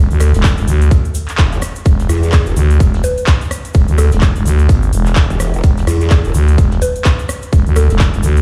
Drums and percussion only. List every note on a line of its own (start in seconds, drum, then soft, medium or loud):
0.11 closed hi-hat soft
0.11 shaker soft
0.20 cross-stick medium
0.20 closed hi-hat medium
0.20 open hi-hat loud
0.20 shaker loud
0.34 snare medium
0.34 closed hi-hat medium
0.34 shaker soft
0.43 kick loud
0.43 snare loud
0.43 clap loud
0.43 closed hi-hat medium
0.43 shaker medium
0.57 closed hi-hat soft
0.57 shaker soft
0.68 closed hi-hat medium
0.68 open hi-hat medium
0.68 shaker medium
0.82 closed hi-hat medium
0.82 shaker soft
0.91 kick loud
0.91 closed hi-hat medium
0.91 shaker medium
1.05 closed hi-hat soft
1.05 shaker soft
1.15 closed hi-hat medium
1.15 open hi-hat loud
1.15 shaker medium
1.28 clap soft
1.28 closed hi-hat medium
1.28 shaker soft
1.38 kick loud
1.38 snare loud
1.38 clap loud
1.38 closed hi-hat medium
1.38 shaker medium
1.52 closed hi-hat soft
1.52 shaker soft
1.62 cross-stick medium
1.62 closed hi-hat medium
1.62 open hi-hat medium
1.62 shaker loud
1.75 closed hi-hat medium
1.75 shaker soft
1.85 kick loud
1.85 closed hi-hat medium
1.85 shaker medium
1.99 snare soft
1.99 closed hi-hat soft
1.99 shaker soft
2.09 cross-stick medium
2.09 open hi-hat medium
2.09 open hi-hat loud
2.09 shaker loud
2.23 closed hi-hat medium
2.23 shaker soft
2.32 kick loud
2.32 snare loud
2.32 clap loud
2.32 closed hi-hat medium
2.32 shaker medium
2.46 closed hi-hat soft
2.46 shaker soft
2.56 closed hi-hat medium
2.56 open hi-hat loud
2.56 shaker medium
2.70 closed hi-hat medium
2.70 shaker soft
2.80 kick loud
2.80 closed hi-hat medium
2.80 shaker medium
2.94 snare medium
2.94 closed hi-hat soft
3.04 closed hi-hat medium
3.04 open hi-hat loud
3.04 shaker medium
3.18 closed hi-hat medium
3.18 shaker soft
3.27 kick loud
3.27 snare loud
3.27 clap loud
3.27 closed hi-hat medium
3.27 closed hi-hat loud
3.27 shaker medium
3.41 closed hi-hat soft
3.41 shaker soft
3.51 cross-stick medium
3.51 closed hi-hat medium
3.51 open hi-hat loud
3.51 shaker loud
3.65 closed hi-hat medium
3.65 shaker soft
3.74 kick loud
3.74 closed hi-hat medium
3.74 shaker soft
3.88 closed hi-hat soft
3.88 shaker soft
3.98 cross-stick medium
3.98 closed hi-hat medium
3.98 open hi-hat loud
3.98 shaker loud
4.12 snare medium
4.12 closed hi-hat medium
4.12 shaker soft
4.21 kick loud
4.21 snare loud
4.21 clap loud
4.21 closed hi-hat medium
4.21 shaker medium
4.36 closed hi-hat soft
4.36 shaker soft
4.45 closed hi-hat medium
4.45 open hi-hat medium
4.45 shaker loud
4.58 closed hi-hat soft
4.58 shaker soft
4.69 kick loud
4.69 closed hi-hat medium
4.69 shaker medium
4.83 closed hi-hat soft
4.83 shaker soft
4.93 closed hi-hat medium
4.93 open hi-hat loud
4.93 shaker medium
5.06 clap soft
5.06 closed hi-hat soft
5.06 shaker soft
5.16 kick loud
5.16 snare loud
5.16 clap loud
5.16 closed hi-hat medium
5.16 shaker medium
5.30 closed hi-hat soft
5.30 shaker soft
5.40 cross-stick medium
5.40 closed hi-hat medium
5.40 open hi-hat loud
5.40 shaker loud
5.54 closed hi-hat medium
5.54 shaker soft
5.64 kick loud
5.64 closed hi-hat medium
5.64 shaker medium
5.78 snare soft
5.78 closed hi-hat soft
5.78 shaker soft
5.87 cross-stick medium
5.87 open hi-hat medium
5.87 open hi-hat loud
5.87 shaker medium
6.01 closed hi-hat medium
6.01 shaker soft
6.10 kick loud
6.10 snare loud
6.10 clap loud
6.10 closed hi-hat medium
6.10 closed hi-hat loud
6.10 shaker medium
6.24 closed hi-hat soft
6.24 shaker soft
6.34 closed hi-hat medium
6.34 open hi-hat medium
6.34 shaker loud
6.48 closed hi-hat medium
6.48 shaker soft
6.58 kick loud
6.58 closed hi-hat medium
6.58 shaker medium
6.71 snare soft
6.71 closed hi-hat soft
6.81 closed hi-hat medium
6.81 open hi-hat loud
6.81 shaker loud
6.96 closed hi-hat medium
6.96 shaker soft
7.04 kick loud
7.04 snare loud
7.04 clap loud
7.04 closed hi-hat loud
7.04 closed hi-hat medium
7.04 shaker medium
7.19 closed hi-hat soft
7.19 shaker soft
7.29 cross-stick medium
7.29 closed hi-hat medium
7.29 open hi-hat loud
7.29 shaker loud
7.42 closed hi-hat medium
7.42 shaker soft
7.53 kick loud
7.53 closed hi-hat medium
7.53 shaker medium
7.67 closed hi-hat soft
7.67 shaker soft
7.76 cross-stick medium
7.76 closed hi-hat medium
7.76 open hi-hat loud
7.76 shaker loud
7.90 snare medium
7.90 closed hi-hat medium
7.90 shaker soft
7.99 kick loud
7.99 snare loud
7.99 clap loud
7.99 closed hi-hat medium
7.99 shaker soft
8.14 closed hi-hat soft
8.14 shaker soft
8.23 closed hi-hat medium
8.23 open hi-hat medium
8.23 shaker medium
8.36 closed hi-hat medium
8.36 shaker soft